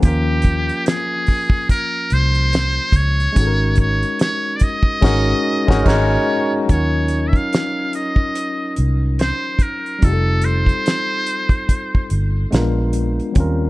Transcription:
0.00 0.70 D#2 loud
0.00 3.30 F3 medium
0.00 3.31 A#3 medium
0.00 3.32 C#4 medium
0.00 kick loud
0.00 closed hi-hat medium
0.05 3.33 F4 medium
0.05 0.83 G4 loud
0.05 3.34 A#4 medium
0.42 kick loud
0.42 closed hi-hat medium
0.69 closed hi-hat soft
0.86 1.66 G#4 loud
0.86 snare loud
0.86 closed hi-hat medium
1.26 kick medium
1.26 open hi-hat medium
1.50 kick loud
1.69 2.15 A#4 loud
1.69 kick medium
1.69 closed hi-hat medium
2.10 2.78 C2 medium
2.10 2.98 C5 loud
2.10 closed hi-hat medium
2.34 closed hi-hat soft
2.53 snare loud
2.53 closed hi-hat medium
2.92 3.27 C#2 medium
2.92 3.79 C#5 loud
2.92 kick medium
2.92 closed hi-hat medium
3.20 closed hi-hat soft
3.32 4.97 G#3 medium
3.32 4.99 C#4 medium
3.32 closed hi-hat loud
3.36 4.03 G#1 loud
3.36 5.00 D#4 medium
3.36 5.00 F#4 medium
3.36 kick loud
3.41 3.46 A4 medium
3.47 5.03 A#4 medium
3.75 kick medium
3.75 closed hi-hat medium
3.80 4.18 C#5 loud
4.03 closed hi-hat soft
4.19 4.58 C#5 loud
4.19 snare loud
4.19 closed hi-hat medium
4.56 4.65 D5 medium
4.56 closed hi-hat medium
4.61 5.87 D#5 loud
4.61 kick medium
4.83 kick loud
5.01 5.32 G#1 loud
5.01 5.31 G#3 medium
5.01 5.32 C#4 medium
5.01 5.32 D#4 medium
5.01 5.33 F#4 loud
5.01 5.33 A#4 loud
5.01 kick loud
5.01 snare loud
5.01 crash medium
5.67 5.83 G#1 medium
5.67 5.82 G#3 loud
5.67 5.83 C#4 loud
5.67 5.83 D#4 loud
5.67 5.84 F#4 loud
5.67 kick loud
5.67 snare loud
5.71 5.85 A#4 loud
5.84 6.16 G#1 loud
5.84 6.14 G#3 loud
5.84 6.15 C#4 loud
5.84 6.16 D#4 loud
5.84 6.16 F#4 loud
5.84 6.17 A#4 loud
5.84 kick loud
5.84 snare loud
5.84 crash medium
5.88 6.54 C#5 medium
6.66 9.97 F#3 medium
6.66 9.98 C#4 soft
6.66 kick loud
6.66 closed hi-hat medium
6.70 7.36 D#2 loud
6.70 9.99 D#4 soft
6.70 10.00 F4 medium
6.70 10.01 A#4 medium
6.70 7.30 C#5 medium
7.08 closed hi-hat medium
7.29 7.38 E5 medium
7.33 7.95 F5 medium
7.33 kick medium
7.33 closed hi-hat soft
7.53 snare loud
7.53 closed hi-hat medium
7.93 8.74 D#5 medium
7.93 closed hi-hat medium
8.16 kick medium
8.35 closed hi-hat medium
8.76 9.31 C2 medium
8.76 closed hi-hat medium
9.19 9.64 C5 loud
9.19 snare loud
9.19 closed hi-hat medium
9.59 10.06 A#4 medium
9.59 kick medium
9.59 closed hi-hat medium
9.86 closed hi-hat soft
9.99 12.47 G3 medium
9.99 12.48 C4 soft
9.99 12.49 D#4 medium
9.99 closed hi-hat medium
10.03 10.69 F1 loud
10.03 12.50 F4 medium
10.03 10.46 A4 medium
10.03 kick loud
10.07 10.12 G4 soft
10.13 12.54 A4 medium
10.42 12.11 C5 loud
10.42 closed hi-hat medium
10.66 kick medium
10.66 closed hi-hat soft
10.86 snare loud
10.86 closed hi-hat medium
11.26 closed hi-hat medium
11.49 kick medium
11.49 closed hi-hat soft
11.69 kick medium
11.69 closed hi-hat medium
11.95 kick medium
12.10 12.44 G1 medium
12.10 closed hi-hat medium
12.51 13.19 A#1 loud
12.51 13.35 G#3 medium
12.51 13.36 B3 medium
12.51 13.36 D4 medium
12.51 13.36 F4 medium
12.51 13.37 A#4 medium
12.51 snare loud
12.51 closed hi-hat medium
12.93 closed hi-hat medium
13.20 closed hi-hat soft
13.32 13.42 F#3 medium
13.32 13.70 C4 medium
13.32 kick loud
13.32 closed hi-hat medium
13.36 13.70 D#2 loud
13.36 13.70 G3 medium
13.36 13.70 C#4 medium
13.36 13.70 F4 medium
13.36 13.70 A#4 medium

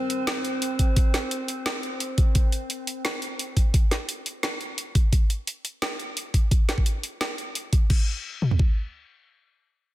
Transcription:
0.00 2.31 G3 medium
0.00 2.36 C4 medium
0.00 2.31 D#4 medium
0.00 2.31 C5 medium
0.10 closed hi-hat medium
0.27 snare loud
0.27 closed hi-hat medium
0.45 closed hi-hat soft
0.62 closed hi-hat medium
0.79 kick medium
0.79 closed hi-hat medium
0.96 kick loud
0.96 closed hi-hat medium
1.14 snare medium
1.14 closed hi-hat medium
1.31 closed hi-hat medium
1.48 closed hi-hat medium
1.66 snare loud
1.66 closed hi-hat medium
1.83 closed hi-hat soft
2.00 closed hi-hat medium
2.18 kick loud
2.18 closed hi-hat medium
2.35 kick loud
2.35 closed hi-hat medium
2.52 closed hi-hat medium
2.70 closed hi-hat medium
2.87 closed hi-hat medium
3.05 snare loud
3.05 closed hi-hat medium
3.22 closed hi-hat soft
3.39 closed hi-hat medium
3.57 kick medium
3.57 closed hi-hat medium
3.74 kick loud
3.74 closed hi-hat medium
3.91 snare medium
3.91 closed hi-hat medium
4.09 closed hi-hat medium
4.26 closed hi-hat medium
4.43 snare loud
4.43 closed hi-hat medium
4.61 closed hi-hat soft
4.78 closed hi-hat medium
4.95 kick medium
4.95 closed hi-hat medium
5.13 kick loud
5.13 closed hi-hat medium
5.30 closed hi-hat medium
5.47 closed hi-hat medium
5.65 closed hi-hat medium
5.82 snare loud
5.82 closed hi-hat medium
5.99 closed hi-hat soft
6.17 closed hi-hat medium
6.34 kick medium
6.34 closed hi-hat medium
6.51 kick loud
6.51 closed hi-hat medium
6.69 snare medium
6.69 closed hi-hat medium
6.78 kick medium
6.86 closed hi-hat medium
7.03 closed hi-hat medium
7.21 snare loud
7.21 closed hi-hat medium
7.38 closed hi-hat soft
7.55 closed hi-hat medium
7.73 kick medium
7.73 closed hi-hat medium
7.90 kick loud
7.90 crash medium
8.42 mid tom medium
8.51 floor tom medium
8.59 kick medium

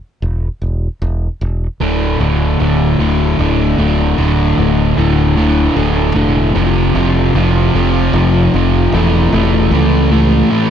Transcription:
0.22 0.48 E1 medium
0.62 0.87 E1 medium
1.02 1.27 E1 medium
1.41 1.67 E1 medium
1.80 2.16 D1 medium
1.80 2.20 D2 medium
1.80 2.19 A2 medium
1.80 2.20 D3 medium
2.20 2.56 D1 medium
2.20 2.59 D2 medium
2.20 2.59 A2 medium
2.20 2.60 D3 medium
2.60 2.95 D1 medium
2.60 2.98 D2 medium
2.60 2.98 A2 medium
2.60 2.99 D3 medium
2.99 3.35 D1 medium
2.99 3.37 D2 medium
2.99 3.38 A2 medium
2.99 3.38 D3 loud
3.38 3.75 D1 medium
3.38 3.77 D2 medium
3.38 3.77 A2 medium
3.38 3.78 D3 medium
3.78 4.14 D1 medium
3.78 4.16 D2 medium
3.78 4.16 A2 medium
3.78 4.17 D3 medium
4.18 4.54 D1 medium
4.18 4.57 D2 medium
4.18 4.57 A2 loud
4.18 4.57 D3 medium
4.58 4.93 D1 medium
4.58 4.96 D2 medium
4.58 4.96 A2 medium
4.58 4.97 D3 medium
4.97 5.68 D1 medium
4.97 5.35 D2 medium
4.97 5.36 A2 medium
4.97 5.36 D3 medium
5.37 5.75 D2 loud
5.37 5.75 A2 medium
5.37 5.75 D3 loud
5.76 6.12 D1 medium
5.76 6.14 D2 medium
5.76 6.14 A2 medium
5.76 6.15 D3 medium
6.15 6.51 E1 medium
6.15 6.53 D2 medium
6.15 6.53 A2 medium
6.15 6.53 D3 medium
6.54 6.91 F1 medium
6.54 6.93 F2 medium
6.54 6.94 C3 loud
6.54 6.94 F3 loud
6.94 7.30 F1 medium
6.94 7.34 F2 medium
6.94 7.34 C3 medium
6.94 7.34 F3 medium
7.34 7.70 F1 medium
7.34 7.73 F2 medium
7.34 7.74 C3 medium
7.34 7.74 F3 medium
7.74 8.09 F1 medium
7.74 8.13 F2 medium
7.74 8.14 C3 loud
7.74 8.14 F3 loud
8.13 8.49 F1 loud
8.13 8.53 F2 medium
8.13 8.54 C3 medium
8.13 8.54 F3 medium
8.54 8.89 F1 medium
8.54 8.91 F2 medium
8.54 8.91 C3 medium
8.54 8.92 F3 loud
8.92 9.28 E1 loud
8.92 9.32 A2 loud
8.92 9.32 E3 loud
8.92 9.32 A3 loud
9.32 9.67 E1 medium
9.32 9.71 A2 medium
9.32 9.72 E3 medium
9.32 9.72 A3 medium
9.71 10.41 C#2 medium
9.71 10.10 A2 medium
9.71 10.10 E3 medium
9.71 10.11 A3 loud
10.11 10.49 A2 loud
10.11 10.50 E3 loud
10.11 10.50 A3 loud
10.50 10.70 A2 medium
10.50 10.70 E3 medium
10.50 10.70 A3 medium

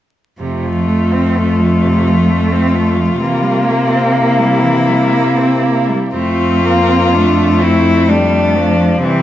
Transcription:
0.39 3.15 F2 soft
0.39 0.66 C3 soft
0.39 3.21 A3 soft
0.39 4.14 F4 soft
0.64 0.90 F3 soft
0.88 1.14 A3 soft
1.13 1.39 C4 soft
1.37 1.61 A3 soft
1.60 1.85 F3 soft
1.84 2.09 C3 soft
2.08 2.32 F3 soft
2.30 2.54 A3 soft
2.52 2.76 C4 soft
2.75 2.98 A3 soft
2.97 3.18 F3 soft
3.19 5.90 C3 soft
3.19 3.43 E3 soft
3.19 5.94 A#3 soft
3.42 3.66 G3 soft
3.65 3.90 A#3 soft
3.89 4.14 C4 soft
4.13 4.40 A#3 soft
4.13 5.94 E4 soft
4.38 4.64 G3 soft
4.63 4.89 E3 soft
4.87 5.13 G3 soft
5.12 5.40 A#3 soft
5.38 5.65 C4 soft
5.63 5.91 A#3 soft
5.89 6.14 G3 soft
6.15 8.99 F2 soft
6.15 6.67 A3 soft
6.15 7.15 C4 soft
6.15 7.64 F4 medium
6.65 7.16 A#3 soft
7.14 8.11 A3 soft
7.14 7.62 D4 soft
7.60 8.09 C4 soft
7.60 8.10 E4 medium
8.08 8.58 G3 soft
8.08 9.01 A3 soft
8.08 9.02 D4 soft
8.56 9.05 F3 soft
9.02 9.22 C3 soft
9.02 9.22 E3 soft
9.02 9.22 G3 soft
9.02 9.22 C4 medium

